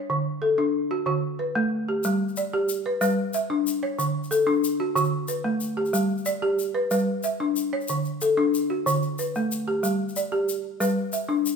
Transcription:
Already playing: balafon C#5
0.10 balafon D3
0.42 balafon A4
0.58 balafon D4
0.91 balafon F#4
1.06 balafon D3 F#4
1.39 balafon B4
1.55 balafon A3
1.89 balafon G4
2.03 balafon G3, shaker
2.28 shaker
2.37 balafon D5, shaker
2.54 balafon G4
2.69 shaker
2.86 balafon B4
3.01 balafon G3 B4, shaker
3.33 balafon E5, shaker
3.50 balafon D4
3.67 shaker
3.83 balafon C#5
3.99 balafon D3, shaker
4.23 shaker
4.31 balafon A4, shaker
4.47 balafon D4
4.64 shaker
4.80 balafon F#4
4.96 balafon D3 F#4, shaker
5.04 shaker
5.28 balafon B4, shaker
5.44 balafon A3
5.60 shaker
5.77 balafon G4
5.85 shaker
5.93 balafon G3, shaker
6.18 shaker
6.26 balafon D5, shaker
6.42 balafon G4
6.59 shaker
6.75 balafon B4
6.91 balafon G3 B4, shaker
7.23 balafon E5, shaker
7.40 balafon D4
7.56 shaker
7.73 balafon C#5
7.81 shaker
7.88 balafon D3, shaker
8.05 shaker
8.21 balafon A4, shaker
8.37 balafon D4
8.54 shaker
8.70 balafon F#4
8.86 balafon D3, shaker
8.94 shaker
9.03 shaker
9.19 balafon B4, shaker
9.35 balafon A3, shaker
9.52 shaker
9.68 balafon G4
9.83 balafon G3, shaker
10.09 shaker
10.16 balafon D5, shaker
10.32 balafon G4
10.49 shaker
10.80 balafon G3 B4, shaker
11.12 balafon E5, shaker
11.29 balafon D4
11.46 shaker

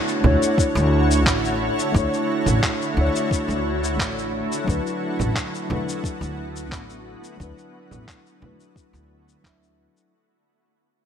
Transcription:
Already playing: ambient pad D3 A3 E4 F#4 C#5, tine electric piano A3 D4 E4 C#5
0.08 shaker
0.21 upright bass D2, tine electric piano A3 D4 E4, low conga
0.27 tine electric piano C#5
0.43 shaker
0.58 kick, shaker
0.75 upright bass D2, shaker
1.11 shaker
1.26 upright bass A1, kick, clap, shaker
1.45 shaker
1.79 shaker
1.92 upright bass D2, tine electric piano A3 D4 E4, kick, shaker
1.98 tine electric piano C#5
2.14 shaker
2.46 upright bass A1, low conga, shaker
2.63 kick, clap, shaker
2.82 shaker
2.94 upright bass D2, tine electric piano A3 D4 E4
3.01 tine electric piano C#5
3.16 shaker
3.31 kick, shaker
3.48 upright bass D2, shaker
3.84 shaker
3.99 upright bass A1, kick, clap, shaker
4.18 shaker
4.52 shaker
4.64 upright bass D2, tine electric piano F#3 D4, kick
4.68 ambient pad B3, tine electric piano E4 B4, shaker
4.87 shaker
5.19 upright bass A1, low conga, shaker
5.36 kick, clap, shaker
5.55 shaker
5.67 upright bass D2, tine electric piano F#3 D4, low conga
5.71 tine electric piano E4 B4
5.89 shaker
6.04 kick, shaker
6.21 upright bass D2, shaker
6.56 shaker
6.72 upright bass A1, kick, clap, shaker
6.90 shaker
7.24 shaker
7.37 upright bass D2, tine electric piano F#3 D4 E4, kick, shaker
7.43 tine electric piano B4
7.58 shaker
7.91 upright bass A1, low conga, shaker
8.08 kick, clap, shaker
8.26 shaker
8.40 upright bass D2, tine electric piano F#3 D4, low conga
8.44 tine electric piano E4 B4
8.60 shaker
8.76 kick, shaker
8.93 upright bass D2, shaker
9.29 shaker
9.42 upright bass D2, tine electric piano F#3 D4 E4 E5, kick, clap
9.46 shaker
9.63 shaker
9.97 shaker

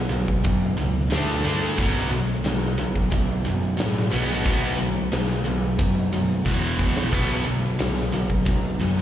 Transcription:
0.10 picked electric bass B1, overdriven electric guitar B2 F#3, closed hi-hat
0.28 kick
0.44 picked electric bass F#2, overdriven electric guitar B2 F#3, kick, closed hi-hat
0.77 picked electric bass C#2, overdriven electric guitar B2 F#3, closed hi-hat
1.11 picked electric bass D2, overdriven electric guitar D3 A3 D4, snare, closed hi-hat
1.45 picked electric bass G2, overdriven electric guitar D3 A3 D4, closed hi-hat
1.78 picked electric bass B1, overdriven electric guitar B2 F#3 B3, kick, closed hi-hat
2.11 picked electric bass B1, overdriven electric guitar B2 F#3, closed hi-hat
2.45 picked electric bass B1, overdriven electric guitar B2 F#3, snare, closed hi-hat
2.77 picked electric bass B1, overdriven electric guitar B2 F#3, closed hi-hat
2.95 kick
3.10 picked electric bass B1, overdriven electric guitar B2 F#3, kick, closed hi-hat
3.45 picked electric bass F#2, overdriven electric guitar B2 F#3, closed hi-hat
3.77 picked electric bass A2, overdriven electric guitar B2 F#3, snare, closed hi-hat
4.10 picked electric bass B1, overdriven electric guitar B2 F#3 B3, closed hi-hat
4.44 picked electric bass B1, overdriven electric guitar B2 F#3 B3, kick, closed hi-hat
4.78 picked electric bass B1, overdriven electric guitar B2 F#3, closed hi-hat
5.12 picked electric bass B1, overdriven electric guitar B2 F#3, snare, closed hi-hat
5.45 picked electric bass B1, overdriven electric guitar B2 F#3, closed hi-hat
5.79 picked electric bass F#2, overdriven electric guitar B2 F#3, kick, closed hi-hat
6.13 picked electric bass F#2, overdriven electric guitar B2 F#3, closed hi-hat
6.46 picked electric bass E1, overdriven electric guitar E2 B2 E3, kick
6.79 picked electric bass A#1, overdriven electric guitar E2 B2 E3, kick
6.97 snare
7.13 picked electric bass B1, overdriven electric guitar B2 F#3 B3, kick, closed hi-hat, splash
7.46 picked electric bass B1, overdriven electric guitar B2 F#3, closed hi-hat
7.79 picked electric bass B1, overdriven electric guitar B2 F#3, snare, closed hi-hat
8.13 picked electric bass B1, overdriven electric guitar B2 F#3, closed hi-hat
8.30 kick
8.46 picked electric bass B1, overdriven electric guitar B2 F#3, kick, closed hi-hat
8.80 picked electric bass F#2, overdriven electric guitar B2 F#3, snare, closed hi-hat

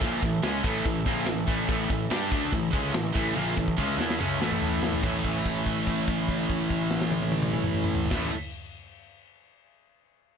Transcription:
Already playing: accordion C#4 A4 E5 A5
0.01 picked electric bass A#1, distorted electric guitar A#2 F3 A#3, kick, crash
0.23 picked electric bass A1, distorted electric guitar A2 E3, kick, crash
0.43 picked electric bass C#2, distorted electric guitar C#3 G#3 C#4, snare, crash
0.64 picked electric bass A1, distorted electric guitar A2 E3 A3, kick, crash
0.85 picked electric bass A1, distorted electric guitar A2 E3, kick, crash
1.06 picked electric bass A#1, distorted electric guitar A#2 F3 A#3, kick, crash
1.26 picked electric bass A1, distorted electric guitar A2 E3, snare, crash
1.48 picked electric bass A1, distorted electric guitar A2 E3 A3, kick, crash
1.69 picked electric bass A1, distorted electric guitar A2 E3 A3, kick, crash
1.90 picked electric bass A1, distorted electric guitar A2 E3, kick, crash
2.11 picked electric bass G2, distorted electric guitar G3 D4 G4, snare, crash
2.31 picked electric bass D2, distorted electric guitar D3 A3 D4, kick, crash
2.52 picked electric bass A1, distorted electric guitar A2 E3, kick, crash
2.73 picked electric bass C#2, distorted electric guitar C#3 G#3 C#4, kick, crash
2.94 picked electric bass A1, distorted electric guitar A2 E3, snare, crash
3.15 picked electric bass A1, distorted electric guitar A2 E3 A3, kick, crash
3.36 picked electric bass A#1, distorted electric guitar A#2 F3 A#3, high tom
3.57 picked electric bass A1, distorted electric guitar A2 E3, kick
3.68 kick
3.78 picked electric bass C#2, distorted electric guitar C#3 G#3 C#4, kick
3.98 picked electric bass E2, distorted electric guitar E3 B3 E4, snare
4.10 snare
4.20 picked electric bass C#2, distorted electric guitar C#3 G#3 C#4, mid tom
4.41 picked electric bass A1, distorted electric guitar A2 E3 A3, snare
4.52 mid tom
4.62 floor tom
4.83 snare
4.93 floor tom
5.03 picked electric bass A1, distorted electric guitar A2 E3 A3 C#4 E4, accordion A3 C#4 E4 C#5 E5, kick, crash
5.25 kick, crash
5.36 crash
5.46 kick, crash
5.57 crash
5.66 kick, crash
5.77 crash
5.87 kick, crash
5.98 crash
6.08 kick, crash
6.18 crash
6.29 kick, crash
6.39 crash
6.50 kick, crash
6.61 crash
6.70 kick, crash
6.81 crash
6.91 snare
7.02 snare
7.12 high tom
7.22 high tom
7.32 high tom
7.43 mid tom
7.54 mid tom
7.63 mid tom
7.74 mid tom
7.84 mid tom
7.95 floor tom
8.06 floor tom
8.10 picked electric bass A1, distorted electric guitar A2 E3 A3 C#4, accordion A3 C#4 E4 C#5 E5, kick, snare, crash
8.15 distorted electric guitar E4

